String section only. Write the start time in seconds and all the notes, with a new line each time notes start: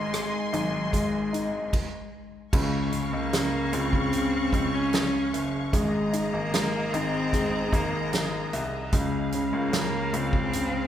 Already playing: A#4 G#5 C6
2.54 G#4 F5 C#6
5.73 G#4 D#5 A#5
8.92 G#4 F5